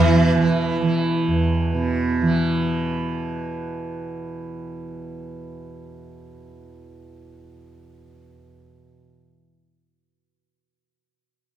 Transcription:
0.00 1.27 E2 medium
0.00 1.74 B2 medium
0.00 0.34 E3 medium
0.00 3.11 E3 medium
0.34 0.82 E3 medium
0.82 2.22 E3 medium
1.27 8.42 E2 medium
1.74 8.89 B2 medium
2.22 9.37 E3 medium

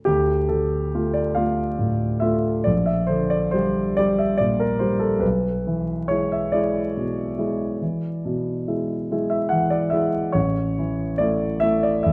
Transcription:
0.05 2.62 D2 soft
0.05 0.51 G4 medium
0.49 1.20 D3 soft
0.49 1.15 A4 soft
0.95 1.33 A3 soft
0.95 1.33 F4 soft
1.14 1.36 D5 medium
1.35 1.76 A3 soft
1.35 1.76 F4 soft
1.35 2.22 F5 medium
1.79 2.48 A2 soft
2.20 2.62 A3 soft
2.20 2.62 F4 soft
2.20 2.65 E5 medium
2.64 5.20 A#1 soft
2.64 2.87 D5 medium
2.86 3.09 E5 medium
3.07 3.80 D3 soft
3.07 3.31 C5 medium
3.30 3.54 D5 medium
3.51 3.94 G3 soft
3.51 3.94 G4 soft
3.51 3.97 C5 medium
3.97 4.36 G3 soft
3.97 4.37 G4 soft
3.97 4.19 D5 medium
4.18 4.40 E5 medium
4.37 5.06 A#2 soft
4.37 4.60 D5 medium
4.60 4.81 A#4 soft
4.79 5.19 G3 soft
4.79 5.19 G4 soft
4.79 5.01 C5 medium
5.00 5.22 A4 medium
5.19 7.75 B1 soft
5.19 6.10 B4 medium
5.67 6.37 E3 soft
6.08 6.50 G#3 soft
6.08 6.50 E4 soft
6.08 6.31 C#5 medium
6.32 6.54 E5 medium
6.52 6.92 G#3 soft
6.52 6.92 E4 soft
6.52 9.30 D5 medium
6.97 7.64 B2 soft
7.39 7.78 G#3 soft
7.39 7.77 E4 soft
7.82 8.51 E3 soft
8.25 8.94 B2 soft
8.68 9.06 G#3 soft
8.68 9.06 E4 soft
9.11 9.48 G#3 soft
9.11 9.49 E4 soft
9.30 9.51 E5 soft
9.49 10.18 E3 soft
9.49 9.71 F#5 medium
9.70 9.92 D5 medium
9.90 10.31 G#3 soft
9.90 10.31 E4 soft
9.90 10.33 E5 medium
10.32 12.13 A1 soft
10.32 11.19 C#5 medium
10.78 11.46 E3 soft
11.18 11.58 A3 soft
11.18 11.59 E4 soft
11.18 11.61 D5 medium
11.60 12.01 A3 soft
11.60 12.01 E4 soft
11.60 11.82 E5 medium
11.83 12.05 D5 medium
12.03 12.13 E2 soft
12.03 12.13 E5 medium

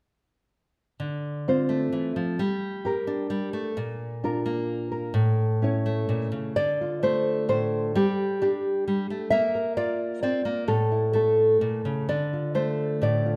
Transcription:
1.00 1.92 D3 medium
1.48 2.40 C4 medium
1.48 2.37 F4 soft
1.48 2.37 C5 medium
1.69 2.36 A3 soft
1.92 2.16 E3 medium
2.16 2.39 F3 medium
2.39 3.29 G3 medium
2.85 3.73 G4 medium
2.85 3.74 A#4 medium
3.07 3.73 D4 medium
3.30 3.53 G3 medium
3.53 3.76 A3 medium
3.77 5.12 A#2 medium
4.24 5.12 D4 soft
4.24 5.13 F4 medium
4.24 4.90 A#4 medium
4.46 5.12 A#3 soft
4.92 5.12 A#4 soft
5.14 6.08 A2 medium
5.62 6.54 C#4 soft
5.62 6.57 E4 soft
5.62 6.55 C#5 medium
5.86 6.54 A3 soft
6.09 6.31 A#2 medium
6.32 6.56 C#3 medium
6.56 7.95 D3 medium
6.56 7.03 D5 loud
6.81 7.93 F4 soft
7.03 7.92 A3 medium
7.03 7.48 C5 medium
7.49 7.95 A2 medium
7.49 7.95 C5 medium
7.95 8.86 G3 medium
7.95 8.41 G4 medium
8.42 9.29 D4 medium
8.42 9.32 G4 medium
8.88 9.09 G3 medium
9.10 9.31 A3 medium
9.30 10.23 A#3 medium
9.30 9.76 E5 loud
9.55 10.66 A#4 soft
9.77 10.66 F4 medium
9.77 10.21 D5 medium
10.23 10.45 C4 medium
10.23 10.68 D5 medium
10.45 10.68 A#3 medium
10.68 11.61 A2 medium
10.68 11.14 A4 medium
10.92 12.09 E4 soft
11.13 12.06 A3 medium
11.13 12.09 A4 medium
11.61 11.85 A#2 medium
11.85 12.09 C#3 medium
12.09 13.36 D3 medium
12.09 12.55 D5 medium
12.33 13.25 F4 soft
12.55 13.36 A3 medium
12.55 13.02 C5 medium
13.02 13.36 A2 medium
13.02 13.36 D5 medium
13.26 13.36 F4 soft

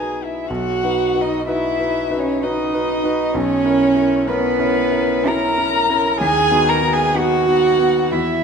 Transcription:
0.00 0.52 D#4 soft
0.00 0.51 F#4 soft
0.00 0.23 G#4 medium
0.00 0.52 B4 soft
0.00 0.25 G#5 soft
0.24 0.49 E4 medium
0.24 0.50 E5 medium
0.47 0.81 B1 medium
0.47 1.23 F#4 medium
0.47 1.22 F#5 medium
0.84 1.12 D#4 soft
0.84 1.12 F#4 soft
0.84 1.13 B4 soft
1.15 1.44 D#4 soft
1.15 1.44 F#4 soft
1.15 1.44 B4 soft
1.21 1.46 D#4 medium
1.21 1.46 D#5 medium
1.47 1.76 D#4 soft
1.47 2.17 E4 medium
1.47 1.76 F#4 soft
1.47 1.77 B4 soft
1.47 2.21 E5 medium
1.79 2.08 D#4 soft
1.79 2.08 F#4 soft
1.79 2.08 B4 medium
2.10 2.39 D#4 soft
2.10 2.39 F#4 soft
2.10 2.40 B4 medium
2.18 2.44 C#4 medium
2.18 2.45 C#5 medium
2.42 2.71 D#4 soft
2.42 3.37 D#4 medium
2.42 2.71 F#4 soft
2.42 2.71 B4 medium
2.42 3.35 D#5 medium
2.74 3.02 D#4 soft
2.74 3.02 F#4 soft
2.74 3.02 B4 medium
3.04 3.32 D#4 medium
3.04 3.33 F#4 soft
3.04 3.33 B4 medium
3.34 3.65 B1 medium
3.34 4.30 C#4 loud
3.34 4.30 C#5 medium
3.65 3.93 C#4 soft
3.65 3.93 E4 medium
3.65 3.94 A#4 medium
3.96 4.24 C#4 soft
3.96 4.25 E4 soft
3.96 4.25 A#4 medium
4.28 5.29 B3 loud
4.28 4.57 C#4 medium
4.28 4.57 E4 medium
4.28 4.57 A#4 medium
4.28 5.28 B4 medium
4.59 4.90 C#4 medium
4.59 4.90 E4 medium
4.59 4.91 A#4 medium
4.92 5.23 C#4 medium
4.92 5.23 E4 medium
4.92 5.24 A#4 medium
5.25 5.55 C#4 medium
5.25 5.56 E4 medium
5.25 5.56 A#4 medium
5.25 6.20 A#4 loud
5.25 6.20 A#5 loud
5.58 5.87 C#4 medium
5.58 5.87 E4 soft
5.58 5.87 A#4 medium
5.90 6.18 C#4 medium
5.90 6.18 E4 medium
5.90 6.19 A#4 medium
6.21 6.52 D#2 medium
6.21 6.71 G#4 loud
6.21 6.70 G#5 loud
6.51 6.80 B3 medium
6.51 6.81 D#4 medium
6.51 6.81 F#4 medium
6.69 6.95 A#4 loud
6.69 6.95 A#5 medium
6.82 7.12 B3 soft
6.82 7.12 D#4 soft
6.82 7.13 F#4 soft
6.93 7.19 G#4 loud
6.93 7.16 G#5 medium
7.14 7.44 B3 soft
7.14 7.44 D#4 medium
7.14 7.45 F#4 medium
7.14 8.14 F#4 loud
7.14 8.12 F#5 medium
7.47 7.77 B3 soft
7.47 7.77 D#4 soft
7.47 7.77 F#4 soft
7.79 8.09 B3 soft
7.79 8.09 D#4 soft
7.79 8.09 F#4 soft
8.11 8.44 E2 medium
8.11 8.44 E4 medium
8.11 8.44 E5 medium

